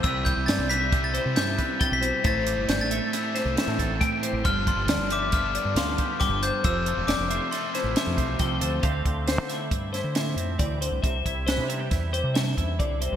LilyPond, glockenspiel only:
\new Staff \with { instrumentName = "Glockenspiel" } { \time 5/4 \key c \major \tempo 4 = 136 e'''8 g'''8 a'''8 b'''8. a'''8. g'''4 a'''16 b'''8. | a'''4 g'''16 a'''8. e'''2~ e'''8 r8 | f'''8 c'''4 d'''8 f'''4 c'''4 d'''8 g'''8 | e'''4 d'''4 c'''2~ c'''8 r8 |
r1 r4 | r1 r4 | }